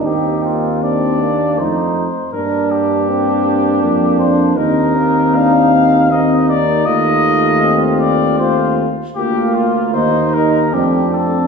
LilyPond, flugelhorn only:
\new Staff \with { instrumentName = "Flugelhorn" } { \time 3/4 \key c \dorian \tempo 4 = 78 c'4 d'4 ees'8 r8 | d'2. | ees'2 ees'4 | f'2 f'8 r8 |
f'4 ees'4 d'4 | }